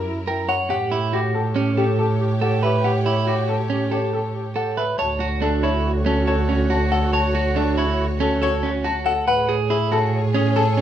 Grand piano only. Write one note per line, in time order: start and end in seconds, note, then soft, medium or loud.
0.00 0.12 A#4 medium
0.28 0.55 G5 medium
0.49 0.68 F#5 medium
0.70 0.98 F#5 medium
1.13 1.41 G4 medium
1.34 1.62 A4 medium
1.77 2.05 G4 medium
1.99 2.27 A4 medium
2.42 2.70 F#5 medium
2.63 2.91 E5 medium
2.84 3.12 F#5 medium
3.27 3.55 G4 medium
3.49 3.77 A4 medium
3.92 4.20 G4 medium
4.13 4.41 A4 medium
4.56 4.84 F#5 soft
4.77 5.05 E5 medium
4.99 5.27 A5 medium
5.42 5.70 A4 medium
5.63 5.91 C#5 medium
6.06 6.34 A4 medium
6.27 6.55 C#5 medium
6.70 6.98 A5 medium
6.92 7.19 F#5 medium
7.13 7.41 A5 medium
7.57 7.84 A4 medium
7.78 8.05 C#5 medium
8.21 8.48 A4 medium
8.43 8.70 C#5 medium
8.85 9.12 A5 medium
9.06 9.26 F#5 medium
9.28 9.55 F#5 medium
9.70 9.98 G#4 medium
9.92 10.20 A4 medium
10.35 10.63 G#4 medium
10.56 10.81 A4 medium